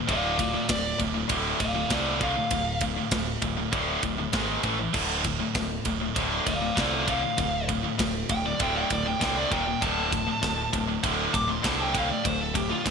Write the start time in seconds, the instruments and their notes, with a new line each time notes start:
0.07 picked electric bass D1, distorted electric guitar D2 A2 D3, lead electric guitar D5 F5, kick, ride
0.38 distorted electric guitar D2 A2, lead electric guitar F4 D5, kick, ride
0.53 distorted electric guitar D2 A2
0.68 picked electric bass D1, distorted electric guitar D2 A2, lead electric guitar D5, kick, snare, ride
0.99 picked electric bass D1, distorted electric guitar D2 A2, kick, ride
1.14 distorted electric guitar D2 A2
1.28 picked electric bass D1, distorted electric guitar D2 A2 D3, kick, ride
1.59 picked electric bass D1, distorted electric guitar D2 A2, lead electric guitar D5 F5, kick, ride
1.75 distorted electric guitar D2 A2
1.90 picked electric bass C2, distorted electric guitar D2 A2 D3, lead electric guitar F4 D5, kick, snare, ride
2.20 distorted electric guitar D2 A2 D3, lead electric guitar F5, kick, ride
2.36 distorted electric guitar D2 A2
2.51 picked electric bass D1, distorted electric guitar D2 A2, kick, ride
2.81 distorted electric guitar D2 A2, kick, ride
2.96 distorted electric guitar D2 A2
3.11 picked electric bass D1, distorted electric guitar D2 A2, kick, snare, ride
3.42 picked electric bass D1, distorted electric guitar D2 A2, kick, ride
3.57 distorted electric guitar D2 A2
3.72 picked electric bass D1, distorted electric guitar D2 A2 D3, kick, ride
4.03 picked electric bass D1, distorted electric guitar D2 A2, kick, ride
4.18 distorted electric guitar D2 A2
4.32 picked electric bass G#1, distorted electric guitar G#2 D#3 G#3, kick, snare, ride
4.62 picked electric bass A1, distorted electric guitar A2 E3 A3, kick, ride
4.78 distorted electric guitar A2 E3
4.93 picked electric bass D1, distorted electric guitar D2 A2 D3, kick, crash
5.24 distorted electric guitar D2 A2, kick, ride
5.40 distorted electric guitar D2 A2
5.55 picked electric bass D1, distorted electric guitar D2 A2, kick, snare, ride
5.85 picked electric bass D1, distorted electric guitar D2 A2, kick, ride
6.02 distorted electric guitar D2 A2
6.16 picked electric bass D1, distorted electric guitar D2 A2 D3, kick, ride
6.46 picked electric bass D1, distorted electric guitar D2 A2, lead electric guitar D5 F5, kick, ride
6.61 distorted electric guitar D2 A2
6.76 picked electric bass C2, distorted electric guitar D2 A2 D3, lead electric guitar F4 D5, kick, snare, ride
7.07 distorted electric guitar D2 A2 D3, lead electric guitar F5, kick, ride
7.22 distorted electric guitar D2 A2
7.37 picked electric bass D1, distorted electric guitar D2 A2, kick, ride
7.68 distorted electric guitar D2 A2, kick, ride
7.83 distorted electric guitar D2 A2
7.98 picked electric bass D1, distorted electric guitar D2 A2, kick, snare, ride
8.29 picked electric bass D1, distorted electric guitar D2 A2, lead electric guitar G5, kick, ride
8.45 distorted electric guitar D2 A2, lead electric guitar D5
8.59 picked electric bass D1, distorted electric guitar D2 A2 D3, lead electric guitar G5, kick, ride
8.76 lead electric guitar G5
8.90 picked electric bass D1, distorted electric guitar D2 A2, lead electric guitar D5, kick, ride
9.05 distorted electric guitar D2 A2, lead electric guitar G5
9.20 picked electric bass C2, distorted electric guitar D2 A2 D3, lead electric guitar G5, kick, snare, ride
9.37 lead electric guitar D5
9.50 picked electric bass D#1, distorted electric guitar D#2 A#2 D#3, lead electric guitar G5, kick, ride
9.66 distorted electric guitar D#2 A#2
9.81 picked electric bass D1, distorted electric guitar D2 A2 D3, lead electric guitar A5, kick, ride
10.12 distorted electric guitar D2 A2, kick, ride
10.27 distorted electric guitar D2 A2
10.42 picked electric bass D1, distorted electric guitar D2 A2, kick, snare, ride
10.73 picked electric bass D1, distorted electric guitar D2 A2, kick, ride
10.88 distorted electric guitar D2 A2
11.03 picked electric bass D1, distorted electric guitar D2 A2 D3, kick, ride
11.33 picked electric bass D1, distorted electric guitar D2 A2, lead electric guitar D6, kick, ride
11.48 distorted electric guitar D2 A2, lead electric guitar C6
11.62 picked electric bass C2, distorted electric guitar D2 A2 D3, lead electric guitar A5, kick, snare, ride
11.81 lead electric guitar G5
11.93 distorted electric guitar D2 A2 D3, kick, ride
11.98 lead electric guitar F5
12.08 distorted electric guitar D2 A2, lead electric guitar D5
12.23 picked electric bass D1, distorted electric guitar D2 A2, lead electric guitar C5, kick, ride
12.42 lead electric guitar A4
12.54 distorted electric guitar D2 A2, lead electric guitar G4, kick, ride
12.69 distorted electric guitar D2 A2, lead electric guitar F4
12.84 picked electric bass D1, distorted electric guitar D2 A2, lead electric guitar D4, kick, snare, ride